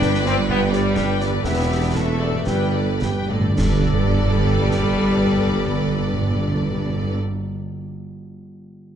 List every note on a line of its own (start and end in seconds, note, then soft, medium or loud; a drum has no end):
0.00 1.44 G1 medium
0.00 0.22 G2 loud
0.00 1.37 G2 medium
0.00 1.45 G2 medium
0.00 1.30 B3 medium
0.00 0.22 D4 loud
0.00 1.34 D4 medium
0.00 0.25 D4 medium
0.00 1.39 G4 medium
0.00 0.93 B4 loud
0.00 0.25 B4 medium
0.00 0.25 G5 medium
0.00 concert bass drum medium
0.00 snare medium
0.14 snare medium
0.23 0.37 C4 loud
0.23 0.48 G4 medium
0.23 0.48 D5 medium
0.23 snare soft
0.48 0.61 B3 loud
0.48 0.70 D4 medium
0.48 0.70 B4 medium
0.48 0.71 G5 medium
0.48 concert bass drum medium
0.72 1.19 G3 loud
0.72 0.96 G4 medium
0.72 0.96 D5 medium
0.72 snare medium
0.96 1.21 D4 medium
0.96 1.44 B4 medium
0.96 1.21 B4 medium
0.96 1.21 G5 medium
0.96 concert bass drum medium
0.96 snare medium
1.20 1.32 G3 medium
1.20 1.45 G4 medium
1.20 1.45 D5 medium
1.20 1.46 D5 medium
1.20 snare medium
1.27 2.40 E2 medium
1.31 2.34 B3 medium
1.35 2.38 D4 medium
1.40 5.30 G4 medium
1.40 1.94 G4 medium
1.44 2.45 E1 medium
1.44 2.45 E2 medium
1.44 1.94 B3 medium
1.44 1.68 E4 medium
1.44 1.68 B4 medium
1.44 1.69 E5 medium
1.44 concert bass drum medium
1.44 snare medium
1.69 1.94 G4 medium
1.69 1.95 D5 medium
1.69 1.94 E5 medium
1.94 2.47 A3 loud
1.94 2.20 E4 medium
1.94 2.46 A4 medium
1.94 2.20 B4 medium
1.94 2.22 E5 medium
1.94 concert bass drum medium
1.94 snare medium
2.20 2.45 G4 medium
2.20 2.47 D5 medium
2.20 2.47 E5 medium
2.30 3.52 G2 medium
2.35 3.71 B3 soft
2.39 3.77 D4 soft
2.43 3.31 G1 medium
2.43 2.72 G4 medium
2.43 3.84 A4 soft
2.43 2.72 B4 medium
2.43 3.28 B4 medium
2.43 concert bass drum medium
2.43 snare medium
2.48 3.31 G1 medium
2.48 2.96 G2 medium
2.48 3.01 G3 medium
2.48 2.73 G5 medium
2.56 2.63 G2 soft
2.73 2.82 G2 soft
2.73 3.00 G4 medium
2.73 3.02 A4 medium
2.73 3.02 D5 medium
2.93 2.99 G2 medium
3.01 3.10 G2 medium
3.01 3.09 G2 medium
3.01 3.29 G4 medium
3.01 3.30 B4 medium
3.01 3.30 G5 medium
3.01 concert bass drum medium
3.01 snare medium
3.12 3.19 G2 medium
3.21 3.28 G2 medium
3.29 3.38 G2 medium
3.29 3.57 A2 medium
3.29 3.58 G4 medium
3.29 3.56 A4 medium
3.29 3.57 D5 medium
3.39 3.47 G2 loud
3.48 3.57 G2 loud
3.56 7.17 G1 medium
3.56 3.64 G2 medium
3.56 7.48 G2 medium
3.56 7.17 G2 medium
3.56 7.17 G3 loud
3.56 7.16 A4 medium
3.56 7.15 B4 medium
3.56 7.18 D5 medium
3.56 concert bass drum loud
3.56 snare loud
3.56 crash medium
3.64 3.71 G2 medium
3.64 7.24 G3 medium
3.72 3.79 G2 medium
3.72 7.31 B3 medium
3.78 3.86 G2 medium
3.78 7.37 D4 medium
3.86 3.93 G2 medium
3.86 7.45 A4 medium
3.93 4.00 G2 medium
3.93 7.52 D5 medium
4.00 4.06 G2 medium
4.06 4.13 G2 medium
4.13 4.20 G2 medium
4.20 4.27 G2 medium
4.27 4.33 G2 medium
4.33 4.40 G2 medium
4.40 4.47 G2 medium
4.47 4.54 G2 medium
4.54 4.61 G2 medium
4.61 4.68 G2 medium
4.68 4.75 G2 medium
4.68 snare medium
4.75 4.82 G2 medium
4.82 4.89 G2 medium
4.89 4.96 G2 medium
4.96 5.03 G2 medium
5.03 5.10 G2 medium
5.10 5.16 G2 medium
5.17 5.24 G2 medium
5.24 5.31 G2 medium
5.31 5.37 G2 medium
5.37 5.44 G2 medium
5.44 5.51 G2 medium
5.51 5.58 G2 medium
5.58 5.65 G2 medium
5.66 5.73 G2 medium
5.73 5.80 G2 medium
5.80 5.86 G2 medium
5.86 5.93 G2 medium
5.93 5.99 G2 medium
5.99 6.06 G2 medium
6.06 6.13 G2 medium
6.13 6.20 G2 medium
6.20 6.27 G2 medium
6.27 6.34 G2 medium
6.34 6.41 G2 medium
6.41 6.47 G2 medium
6.47 6.54 G2 medium
6.54 6.61 G2 medium
6.61 6.68 G2 medium
6.68 6.75 G2 medium
6.75 6.82 G2 medium
6.82 6.89 G2 medium
6.89 6.96 G2 medium
6.96 7.03 G2 medium
7.03 7.10 G2 medium
7.11 7.18 G2 medium